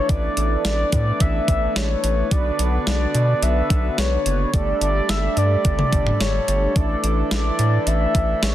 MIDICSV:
0, 0, Header, 1, 6, 480
1, 0, Start_track
1, 0, Tempo, 555556
1, 80, Time_signature, 4, 2, 24, 8
1, 7386, End_track
2, 0, Start_track
2, 0, Title_t, "Soft synth lead"
2, 0, Program_c, 0, 80
2, 0, Note_on_c, 0, 73, 96
2, 83, Note_on_c, 0, 74, 100
2, 96, Note_off_c, 0, 73, 0
2, 558, Note_off_c, 0, 74, 0
2, 564, Note_on_c, 0, 74, 97
2, 785, Note_off_c, 0, 74, 0
2, 803, Note_on_c, 0, 74, 97
2, 1043, Note_on_c, 0, 76, 100
2, 1056, Note_off_c, 0, 74, 0
2, 1523, Note_on_c, 0, 73, 98
2, 1536, Note_off_c, 0, 76, 0
2, 2003, Note_on_c, 0, 74, 106
2, 2016, Note_off_c, 0, 73, 0
2, 2477, Note_off_c, 0, 74, 0
2, 2482, Note_on_c, 0, 74, 101
2, 2963, Note_on_c, 0, 76, 107
2, 2976, Note_off_c, 0, 74, 0
2, 3443, Note_on_c, 0, 73, 100
2, 3456, Note_off_c, 0, 76, 0
2, 3923, Note_on_c, 0, 74, 104
2, 3936, Note_off_c, 0, 73, 0
2, 4158, Note_off_c, 0, 74, 0
2, 4163, Note_on_c, 0, 74, 101
2, 4402, Note_on_c, 0, 76, 107
2, 4415, Note_off_c, 0, 74, 0
2, 4644, Note_on_c, 0, 74, 112
2, 4657, Note_off_c, 0, 76, 0
2, 5363, Note_on_c, 0, 73, 105
2, 5376, Note_off_c, 0, 74, 0
2, 5842, Note_on_c, 0, 74, 108
2, 5855, Note_off_c, 0, 73, 0
2, 6319, Note_off_c, 0, 74, 0
2, 6324, Note_on_c, 0, 74, 106
2, 6804, Note_on_c, 0, 76, 112
2, 6817, Note_off_c, 0, 74, 0
2, 7284, Note_on_c, 0, 73, 99
2, 7297, Note_off_c, 0, 76, 0
2, 7386, Note_off_c, 0, 73, 0
2, 7386, End_track
3, 0, Start_track
3, 0, Title_t, "Analog polysynth"
3, 0, Program_c, 1, 90
3, 0, Note_on_c, 1, 57, 71
3, 0, Note_on_c, 1, 62, 65
3, 0, Note_on_c, 1, 64, 64
3, 0, Note_on_c, 1, 69, 76
3, 1965, Note_off_c, 1, 69, 0
3, 1966, Note_off_c, 1, 57, 0
3, 1966, Note_off_c, 1, 62, 0
3, 1966, Note_off_c, 1, 64, 0
3, 1999, Note_on_c, 1, 62, 65
3, 1999, Note_on_c, 1, 66, 65
3, 1999, Note_on_c, 1, 71, 79
3, 2000, Note_on_c, 1, 59, 69
3, 3885, Note_off_c, 1, 59, 0
3, 3885, Note_off_c, 1, 62, 0
3, 3885, Note_off_c, 1, 66, 0
3, 3885, Note_off_c, 1, 71, 0
3, 3919, Note_on_c, 1, 69, 77
3, 3920, Note_on_c, 1, 57, 71
3, 3920, Note_on_c, 1, 62, 64
3, 3920, Note_on_c, 1, 67, 65
3, 5805, Note_off_c, 1, 62, 0
3, 5805, Note_off_c, 1, 67, 0
3, 5805, Note_off_c, 1, 69, 0
3, 5806, Note_off_c, 1, 57, 0
3, 5841, Note_on_c, 1, 57, 67
3, 5841, Note_on_c, 1, 62, 64
3, 5841, Note_on_c, 1, 64, 65
3, 5841, Note_on_c, 1, 69, 77
3, 7386, Note_off_c, 1, 57, 0
3, 7386, Note_off_c, 1, 62, 0
3, 7386, Note_off_c, 1, 64, 0
3, 7386, Note_off_c, 1, 69, 0
3, 7386, End_track
4, 0, Start_track
4, 0, Title_t, "Harmonium"
4, 0, Program_c, 2, 20
4, 0, Note_on_c, 2, 52, 81
4, 0, Note_on_c, 2, 62, 91
4, 81, Note_on_c, 2, 59, 74
4, 1966, Note_off_c, 2, 52, 0
4, 1966, Note_off_c, 2, 62, 0
4, 1998, Note_on_c, 2, 50, 84
4, 1999, Note_on_c, 2, 62, 90
4, 3886, Note_off_c, 2, 59, 0
4, 3900, Note_off_c, 2, 50, 0
4, 3900, Note_off_c, 2, 62, 0
4, 3919, Note_on_c, 2, 55, 85
4, 3919, Note_on_c, 2, 57, 79
4, 3920, Note_on_c, 2, 62, 90
4, 5820, Note_off_c, 2, 55, 0
4, 5821, Note_off_c, 2, 62, 0
4, 5841, Note_on_c, 2, 52, 82
4, 5841, Note_on_c, 2, 62, 92
4, 7386, Note_off_c, 2, 52, 0
4, 7386, Note_off_c, 2, 57, 0
4, 7386, Note_off_c, 2, 62, 0
4, 7386, End_track
5, 0, Start_track
5, 0, Title_t, "Analog synth bass"
5, 0, Program_c, 3, 38
5, 80, Note_on_c, 3, 33, 116
5, 248, Note_off_c, 3, 33, 0
5, 321, Note_on_c, 3, 33, 101
5, 489, Note_off_c, 3, 33, 0
5, 561, Note_on_c, 3, 33, 100
5, 729, Note_off_c, 3, 33, 0
5, 800, Note_on_c, 3, 45, 103
5, 968, Note_off_c, 3, 45, 0
5, 1041, Note_on_c, 3, 33, 111
5, 1209, Note_off_c, 3, 33, 0
5, 1280, Note_on_c, 3, 33, 95
5, 1448, Note_off_c, 3, 33, 0
5, 1519, Note_on_c, 3, 33, 108
5, 1688, Note_off_c, 3, 33, 0
5, 1760, Note_on_c, 3, 33, 90
5, 1928, Note_off_c, 3, 33, 0
5, 1999, Note_on_c, 3, 35, 119
5, 2168, Note_off_c, 3, 35, 0
5, 2239, Note_on_c, 3, 35, 104
5, 2407, Note_off_c, 3, 35, 0
5, 2479, Note_on_c, 3, 35, 102
5, 2647, Note_off_c, 3, 35, 0
5, 2718, Note_on_c, 3, 47, 110
5, 2887, Note_off_c, 3, 47, 0
5, 2959, Note_on_c, 3, 35, 109
5, 3127, Note_off_c, 3, 35, 0
5, 3199, Note_on_c, 3, 35, 112
5, 3367, Note_off_c, 3, 35, 0
5, 3439, Note_on_c, 3, 35, 108
5, 3608, Note_off_c, 3, 35, 0
5, 3679, Note_on_c, 3, 30, 100
5, 3847, Note_off_c, 3, 30, 0
5, 3919, Note_on_c, 3, 31, 106
5, 4087, Note_off_c, 3, 31, 0
5, 4158, Note_on_c, 3, 31, 108
5, 4327, Note_off_c, 3, 31, 0
5, 4399, Note_on_c, 3, 31, 92
5, 4568, Note_off_c, 3, 31, 0
5, 4639, Note_on_c, 3, 43, 106
5, 4807, Note_off_c, 3, 43, 0
5, 4881, Note_on_c, 3, 31, 105
5, 5048, Note_off_c, 3, 31, 0
5, 5119, Note_on_c, 3, 31, 99
5, 5288, Note_off_c, 3, 31, 0
5, 5360, Note_on_c, 3, 31, 103
5, 5528, Note_off_c, 3, 31, 0
5, 5600, Note_on_c, 3, 31, 98
5, 5768, Note_off_c, 3, 31, 0
5, 5839, Note_on_c, 3, 33, 115
5, 6008, Note_off_c, 3, 33, 0
5, 6079, Note_on_c, 3, 33, 108
5, 6247, Note_off_c, 3, 33, 0
5, 6318, Note_on_c, 3, 33, 100
5, 6487, Note_off_c, 3, 33, 0
5, 6559, Note_on_c, 3, 45, 104
5, 6727, Note_off_c, 3, 45, 0
5, 6798, Note_on_c, 3, 33, 104
5, 6967, Note_off_c, 3, 33, 0
5, 7040, Note_on_c, 3, 33, 107
5, 7208, Note_off_c, 3, 33, 0
5, 7279, Note_on_c, 3, 33, 110
5, 7386, Note_off_c, 3, 33, 0
5, 7386, End_track
6, 0, Start_track
6, 0, Title_t, "Drums"
6, 79, Note_on_c, 9, 42, 82
6, 80, Note_on_c, 9, 36, 127
6, 166, Note_off_c, 9, 36, 0
6, 166, Note_off_c, 9, 42, 0
6, 320, Note_on_c, 9, 42, 85
6, 406, Note_off_c, 9, 42, 0
6, 559, Note_on_c, 9, 42, 81
6, 560, Note_on_c, 9, 38, 109
6, 646, Note_off_c, 9, 38, 0
6, 646, Note_off_c, 9, 42, 0
6, 799, Note_on_c, 9, 42, 72
6, 800, Note_on_c, 9, 36, 95
6, 885, Note_off_c, 9, 42, 0
6, 887, Note_off_c, 9, 36, 0
6, 1040, Note_on_c, 9, 42, 75
6, 1041, Note_on_c, 9, 36, 98
6, 1126, Note_off_c, 9, 42, 0
6, 1128, Note_off_c, 9, 36, 0
6, 1280, Note_on_c, 9, 36, 100
6, 1281, Note_on_c, 9, 42, 76
6, 1366, Note_off_c, 9, 36, 0
6, 1367, Note_off_c, 9, 42, 0
6, 1522, Note_on_c, 9, 38, 111
6, 1523, Note_on_c, 9, 42, 80
6, 1608, Note_off_c, 9, 38, 0
6, 1609, Note_off_c, 9, 42, 0
6, 1760, Note_on_c, 9, 42, 85
6, 1846, Note_off_c, 9, 42, 0
6, 1999, Note_on_c, 9, 36, 122
6, 1999, Note_on_c, 9, 42, 81
6, 2085, Note_off_c, 9, 42, 0
6, 2086, Note_off_c, 9, 36, 0
6, 2239, Note_on_c, 9, 42, 87
6, 2326, Note_off_c, 9, 42, 0
6, 2479, Note_on_c, 9, 38, 114
6, 2479, Note_on_c, 9, 42, 85
6, 2565, Note_off_c, 9, 42, 0
6, 2566, Note_off_c, 9, 38, 0
6, 2718, Note_on_c, 9, 42, 70
6, 2804, Note_off_c, 9, 42, 0
6, 2959, Note_on_c, 9, 42, 74
6, 3046, Note_off_c, 9, 42, 0
6, 3199, Note_on_c, 9, 36, 104
6, 3200, Note_on_c, 9, 42, 75
6, 3286, Note_off_c, 9, 36, 0
6, 3287, Note_off_c, 9, 42, 0
6, 3440, Note_on_c, 9, 38, 110
6, 3441, Note_on_c, 9, 42, 81
6, 3526, Note_off_c, 9, 38, 0
6, 3527, Note_off_c, 9, 42, 0
6, 3680, Note_on_c, 9, 42, 86
6, 3766, Note_off_c, 9, 42, 0
6, 3919, Note_on_c, 9, 36, 125
6, 3919, Note_on_c, 9, 42, 84
6, 4005, Note_off_c, 9, 36, 0
6, 4005, Note_off_c, 9, 42, 0
6, 4159, Note_on_c, 9, 42, 87
6, 4246, Note_off_c, 9, 42, 0
6, 4399, Note_on_c, 9, 42, 81
6, 4400, Note_on_c, 9, 38, 113
6, 4485, Note_off_c, 9, 42, 0
6, 4486, Note_off_c, 9, 38, 0
6, 4638, Note_on_c, 9, 42, 70
6, 4725, Note_off_c, 9, 42, 0
6, 4879, Note_on_c, 9, 42, 76
6, 4881, Note_on_c, 9, 36, 99
6, 4966, Note_off_c, 9, 42, 0
6, 4967, Note_off_c, 9, 36, 0
6, 5000, Note_on_c, 9, 47, 103
6, 5086, Note_off_c, 9, 47, 0
6, 5120, Note_on_c, 9, 36, 101
6, 5120, Note_on_c, 9, 42, 72
6, 5206, Note_off_c, 9, 36, 0
6, 5207, Note_off_c, 9, 42, 0
6, 5241, Note_on_c, 9, 45, 93
6, 5327, Note_off_c, 9, 45, 0
6, 5361, Note_on_c, 9, 38, 115
6, 5362, Note_on_c, 9, 42, 78
6, 5448, Note_off_c, 9, 38, 0
6, 5449, Note_off_c, 9, 42, 0
6, 5600, Note_on_c, 9, 42, 84
6, 5687, Note_off_c, 9, 42, 0
6, 5839, Note_on_c, 9, 36, 124
6, 5839, Note_on_c, 9, 42, 80
6, 5925, Note_off_c, 9, 42, 0
6, 5926, Note_off_c, 9, 36, 0
6, 6079, Note_on_c, 9, 42, 86
6, 6166, Note_off_c, 9, 42, 0
6, 6318, Note_on_c, 9, 38, 117
6, 6318, Note_on_c, 9, 42, 85
6, 6404, Note_off_c, 9, 42, 0
6, 6405, Note_off_c, 9, 38, 0
6, 6557, Note_on_c, 9, 42, 69
6, 6643, Note_off_c, 9, 42, 0
6, 6798, Note_on_c, 9, 42, 74
6, 6885, Note_off_c, 9, 42, 0
6, 7039, Note_on_c, 9, 36, 99
6, 7040, Note_on_c, 9, 42, 74
6, 7126, Note_off_c, 9, 36, 0
6, 7126, Note_off_c, 9, 42, 0
6, 7280, Note_on_c, 9, 38, 112
6, 7282, Note_on_c, 9, 42, 81
6, 7367, Note_off_c, 9, 38, 0
6, 7368, Note_off_c, 9, 42, 0
6, 7386, End_track
0, 0, End_of_file